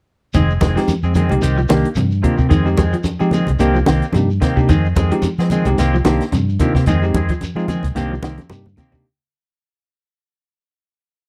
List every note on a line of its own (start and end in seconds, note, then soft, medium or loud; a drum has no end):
0.34 0.58 F1 medium
0.34 0.49 D#3 medium
0.34 0.52 G#3 medium
0.34 0.52 C4 medium
0.34 0.53 G#4 medium
0.34 muted clean electric guitar stroke medium
0.34 kick medium
0.34 closed hi-hat medium
0.34 high conga soft
0.34 low conga medium
0.34 shekere medium
0.50 shekere soft
0.61 0.75 F1 medium
0.61 0.79 D#3 medium
0.61 0.79 G#3 medium
0.61 0.79 C4 medium
0.61 0.79 G#4 medium
0.61 kick medium
0.61 snare soft
0.61 closed hi-hat soft
0.61 high conga medium
0.61 shekere medium
0.76 0.91 F3 medium
0.76 0.93 G#3 medium
0.76 0.93 C4 medium
0.76 0.93 D#4 medium
0.76 0.93 G4 medium
0.76 snare soft
0.76 closed hi-hat medium
0.76 shekere soft
0.88 muted fingered electric bass stroke soft
0.88 closed hi-hat medium
0.88 high conga medium
0.88 shekere medium
1.03 1.27 F2 medium
1.03 1.15 G#3 soft
1.03 1.15 C4 soft
1.03 1.15 G#4 soft
1.03 high conga soft
1.03 shekere soft
1.15 1.33 D#3 medium
1.15 1.33 G#3 medium
1.15 1.34 C4 medium
1.15 1.34 G#4 medium
1.15 closed hi-hat soft
1.15 high conga medium
1.15 low conga medium
1.15 shekere medium
1.29 1.41 C2 medium
1.29 1.42 G#3 medium
1.29 1.42 C4 medium
1.29 1.42 D#4 medium
1.29 1.42 G4 medium
1.29 closed hi-hat soft
1.29 low conga medium
1.29 shekere soft
1.42 1.66 C2 medium
1.42 1.60 D#3 medium
1.42 1.60 C4 medium
1.42 1.60 G4 medium
1.42 muted clean electric guitar stroke medium
1.42 closed hi-hat medium
1.42 high conga soft
1.42 shekere medium
1.58 1.64 F3 medium
1.58 shekere soft
1.69 1.83 C2 medium
1.69 1.87 D#3 medium
1.69 1.84 D#3 medium
1.69 1.88 A#3 medium
1.69 1.87 A#3 medium
1.69 1.88 D4 medium
1.69 1.88 D#4 medium
1.69 1.88 G4 loud
1.69 1.88 G4 medium
1.69 muted clean electric guitar stroke medium
1.69 snare medium
1.69 closed hi-hat medium
1.69 high conga medium
1.69 shekere medium
1.84 closed hi-hat soft
1.84 shekere soft
1.95 2.21 G2 medium
1.95 2.12 C3 medium
1.95 closed hi-hat medium
1.95 high conga medium
1.95 shekere medium
2.11 shekere soft
2.23 2.38 C3 medium
2.23 2.39 D#3 medium
2.23 2.38 A#3 medium
2.23 2.37 A#3 medium
2.23 2.37 C4 medium
2.23 2.38 D4 medium
2.23 2.38 D#4 medium
2.23 2.39 F4 medium
2.23 2.36 G4 medium
2.23 kick medium
2.23 closed hi-hat medium
2.23 shekere medium
2.37 2.50 C3 medium
2.37 2.49 A#3 soft
2.37 2.48 C4 soft
2.37 2.50 G4 soft
2.37 kick medium
2.37 shekere soft
2.49 2.75 F2 medium
2.49 2.68 D#3 medium
2.49 2.65 D#3 medium
2.49 2.68 G#3 medium
2.49 2.68 C4 medium
2.49 2.68 G#4 medium
2.49 kick medium
2.49 closed hi-hat medium
2.49 high conga soft
2.49 low conga medium
2.49 shekere medium
2.65 2.82 G#3 medium
2.65 2.82 C4 medium
2.65 2.82 D#4 medium
2.65 2.82 G4 medium
2.65 shekere soft
2.77 2.92 F2 medium
2.77 2.95 D#3 medium
2.77 2.96 G#3 medium
2.77 2.96 C4 medium
2.77 2.96 G#4 medium
2.77 kick medium
2.77 closed hi-hat soft
2.77 high conga medium
2.77 shekere medium
2.93 3.08 F3 medium
2.93 closed hi-hat soft
2.93 shekere soft
3.04 muted fingered electric bass stroke soft
3.04 closed hi-hat medium
3.04 high conga medium
3.04 shekere medium
3.19 3.44 F3 medium
3.19 3.32 G#3 medium
3.19 3.32 C4 soft
3.19 3.32 C4 medium
3.19 3.32 D#4 medium
3.19 3.32 G4 medium
3.19 3.32 G#4 soft
3.19 muted clean electric guitar stroke soft
3.19 high conga soft
3.19 shekere soft
3.31 3.50 D#3 medium
3.31 3.51 G#3 medium
3.31 3.51 C4 medium
3.31 3.51 G#4 medium
3.31 closed hi-hat soft
3.31 low conga medium
3.31 shekere medium
3.47 3.59 C2 medium
3.47 closed hi-hat soft
3.47 low conga medium
3.47 shekere soft
3.59 3.84 C2 medium
3.59 3.77 D#3 medium
3.59 3.78 A#3 medium
3.59 3.78 C4 medium
3.59 3.78 D4 medium
3.59 3.78 D#4 medium
3.59 3.78 G4 medium
3.59 3.79 G4 loud
3.59 closed hi-hat medium
3.59 high conga soft
3.59 shekere medium
3.74 3.81 F3 medium
3.74 shekere soft
3.86 4.00 C2 medium
3.86 4.02 D#3 medium
3.86 4.05 D#3 medium
3.86 4.05 A#3 medium
3.86 4.05 C4 medium
3.86 4.06 G4 medium
3.86 snare medium
3.86 closed hi-hat soft
3.86 high conga medium
3.86 shekere medium
4.02 closed hi-hat soft
4.02 shekere soft
4.13 4.38 G2 medium
4.13 4.29 C3 medium
4.13 4.28 A#3 medium
4.13 4.28 D4 medium
4.13 4.28 D#4 medium
4.13 4.29 G4 medium
4.13 closed hi-hat medium
4.13 high conga medium
4.13 shekere medium
4.30 shekere soft
4.41 4.56 C3 medium
4.41 4.59 D#3 medium
4.41 4.59 A#3 medium
4.41 4.59 C4 medium
4.41 4.60 G4 medium
4.41 kick medium
4.41 snare soft
4.41 closed hi-hat soft
4.41 shekere medium
4.56 4.68 C3 medium
4.56 4.69 A#3 medium
4.56 4.69 D4 medium
4.56 4.69 D#4 medium
4.56 4.69 G4 medium
4.56 kick medium
4.56 shekere soft
4.68 4.93 F2 medium
4.68 4.87 D#3 medium
4.68 4.84 D#3 medium
4.68 4.87 G#3 medium
4.68 4.87 C4 medium
4.68 4.87 G#4 medium
4.68 kick medium
4.68 closed hi-hat medium
4.68 high conga soft
4.68 low conga medium
4.68 shekere medium
4.85 shekere soft
4.96 5.10 F2 medium
4.96 5.14 D#3 medium
4.96 5.14 G#3 medium
4.96 5.14 C4 medium
4.96 5.15 G#4 medium
4.96 kick medium
4.96 closed hi-hat soft
4.96 high conga medium
4.96 shekere medium
5.11 5.26 F3 medium
5.11 5.28 G#3 medium
5.11 5.28 C4 medium
5.11 5.28 D#4 medium
5.11 5.28 G4 medium
5.11 closed hi-hat medium
5.11 shekere soft
5.22 muted fingered electric bass stroke soft
5.22 closed hi-hat medium
5.22 high conga medium
5.22 shekere medium
5.37 5.62 F3 medium
5.37 5.50 G#3 soft
5.37 5.51 C4 soft
5.37 5.51 G#4 soft
5.37 snare soft
5.37 high conga soft
5.37 shekere soft
5.50 5.69 D#3 medium
5.50 5.69 G#3 medium
5.50 5.69 C4 medium
5.50 5.69 G#4 medium
5.50 closed hi-hat soft
5.50 low conga medium
5.50 shekere medium
5.65 5.76 C2 medium
5.65 5.77 G#3 medium
5.65 5.78 C4 medium
5.65 5.78 D#4 medium
5.65 5.78 G4 medium
5.65 closed hi-hat soft
5.65 low conga medium
5.65 shekere soft
5.78 6.02 C2 medium
5.78 5.96 D#3 medium
5.78 5.96 A#3 medium
5.78 5.96 C4 medium
5.78 5.96 G4 medium
5.78 snare soft
5.78 closed hi-hat medium
5.78 high conga soft
5.78 shekere medium
5.94 6.01 F3 medium
5.94 shekere soft
6.05 6.18 C2 medium
6.05 6.23 D#3 medium
6.05 6.21 D#3 medium
6.05 6.23 A#3 medium
6.05 6.24 A#3 medium
6.05 6.23 C4 medium
6.05 6.24 D4 medium
6.05 6.24 D#4 medium
6.05 6.24 G4 medium
6.05 snare medium
6.05 closed hi-hat medium
6.05 high conga medium
6.05 shekere medium
6.20 snare soft
6.20 closed hi-hat medium
6.20 shekere soft
6.32 6.56 G2 medium
6.32 6.47 C3 medium
6.32 closed hi-hat medium
6.32 high conga medium
6.32 shekere medium
6.49 shekere soft
6.59 6.75 C3 medium
6.59 6.75 D#3 medium
6.59 6.74 A#3 medium
6.59 6.75 A#3 medium
6.59 6.74 C4 medium
6.59 6.74 D4 medium
6.59 6.75 D#4 medium
6.59 6.75 F4 medium
6.59 6.74 G4 medium
6.59 kick medium
6.59 closed hi-hat medium
6.59 shekere medium
6.75 6.86 C3 medium
6.75 6.87 A#3 soft
6.75 6.86 C4 soft
6.75 6.87 G4 medium
6.75 kick medium
6.75 snare soft
6.75 shekere soft
6.86 7.11 F2 medium
6.86 7.05 D#3 medium
6.86 7.02 D#3 medium
6.86 7.05 G#3 medium
6.86 7.05 C4 medium
6.86 7.05 G#4 medium
6.86 kick medium
6.86 closed hi-hat medium
6.86 high conga soft
6.86 low conga medium
6.86 shekere medium
7.03 7.18 G#3 medium
7.03 7.19 C4 medium
7.03 7.19 D#4 medium
7.03 7.19 G4 medium
7.03 shekere soft
7.14 7.27 F2 medium
7.14 7.32 D#3 medium
7.14 7.32 G#3 medium
7.14 7.33 C4 medium
7.14 7.33 G#4 medium
7.14 kick medium
7.14 closed hi-hat soft
7.14 high conga medium
7.14 shekere medium
7.29 7.45 F3 medium
7.29 kick medium
7.29 closed hi-hat medium
7.29 shekere soft
7.41 muted fingered electric bass stroke soft
7.41 closed hi-hat medium
7.41 high conga medium
7.41 shekere medium
7.55 7.79 F3 medium
7.55 7.68 G#3 medium
7.55 7.67 G#3 soft
7.55 7.68 C4 medium
7.55 7.67 C4 soft
7.55 7.68 D#4 medium
7.55 7.68 F4 loud
7.55 7.68 G#4 soft
7.55 high conga soft
7.55 shekere soft
7.68 7.86 D#3 medium
7.68 7.86 G#3 medium
7.68 7.86 C4 medium
7.68 7.87 G#4 medium
7.68 closed hi-hat soft
7.68 high conga medium
7.68 low conga medium
7.68 shekere medium
7.83 7.95 C2 medium
7.83 kick medium
7.83 closed hi-hat soft
7.83 low conga medium
7.83 shekere soft
7.95 8.19 C2 medium
7.95 8.13 D#3 medium
7.95 8.14 A#3 medium
7.95 8.14 C4 medium
7.95 8.14 D4 medium
7.95 8.14 D#4 medium
7.95 8.14 G4 medium
7.95 8.15 G4 medium
7.95 snare soft
7.95 closed hi-hat medium
7.95 high conga soft
7.95 shekere medium
8.12 8.18 F3 medium
8.12 shekere soft
8.22 8.36 C2 medium
8.22 8.41 D#3 medium
8.22 8.39 D#3 medium
8.22 8.41 A#3 medium
8.22 8.41 C4 medium
8.22 8.42 G4 medium
8.22 snare medium
8.22 closed hi-hat soft
8.22 high conga medium
8.22 shekere medium
8.38 closed hi-hat soft
8.38 high conga medium
8.38 shekere soft
8.50 8.74 G2 medium
8.50 8.65 C3 medium
8.50 8.64 A#3 medium
8.50 8.64 D4 medium
8.50 8.64 D#4 medium
8.50 8.65 G4 medium
8.50 closed hi-hat medium
8.50 high conga medium
8.50 shekere medium
8.66 low conga medium
8.66 shekere soft
8.77 8.92 C3 medium
8.77 8.95 D#3 medium
8.77 8.96 A#3 medium
8.77 8.96 C4 medium
8.77 8.96 G4 medium
8.77 kick medium
8.77 closed hi-hat soft
8.77 low conga medium
8.77 shekere medium
8.92 9.04 C3 medium
8.92 9.05 A#3 medium
8.92 9.05 D4 medium
8.92 9.05 D#4 medium
8.92 9.05 G4 medium
8.92 kick medium
8.92 low conga medium
8.92 shekere soft